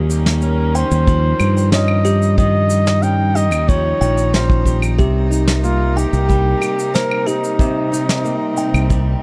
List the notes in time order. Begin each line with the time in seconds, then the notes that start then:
Already playing: D#2 D#3 F3 G3 A#3 C#4 D#4
0.10 G4, cabasa
0.26 snare, cabasa
0.42 C#4 A#4, cabasa
0.75 G4 C5 G5, cabasa
0.91 D#2, cabasa
1.07 F3, kick, cabasa
1.40 G2, cabasa, claves
1.57 cabasa
1.72 C#4 C#5 D#5, snare, cabasa
1.88 claves
2.05 G4, cabasa
2.22 cabasa
2.38 D#3 D#5, kick, cabasa
2.70 G4, cabasa
2.87 snare, cabasa
3.03 C#4 G5, cabasa
3.35 G4 D#5 G5, cabasa
3.52 D#2, cabasa, claves
3.68 F3 C#5, kick, cabasa
4.01 A#1 G5, cabasa
4.18 cabasa
4.33 C#4 C5, snare, cabasa
4.50 kick
4.65 G4, kick, cabasa
4.82 cabasa, claves
4.98 C2 C3 G3 A#3 G4, kick, cabasa
5.31 D#4, cabasa
5.48 snare, cabasa
5.63 A#3 F4, cabasa
5.96 D#4 G4 G5, cabasa
6.13 C2, cabasa
6.29 G3, kick, cabasa
6.61 G4, cabasa, claves
6.79 cabasa
6.94 A#3 A#4 C5, snare, cabasa
7.11 claves
7.26 D#4 G4, cabasa
7.44 cabasa
7.59 C3 C4, kick, cabasa
7.92 D#4, cabasa
8.09 snare, cabasa
8.24 A#3, cabasa
8.57 D#4 G5, cabasa
8.74 C2, cabasa, claves
8.90 G3, kick, cabasa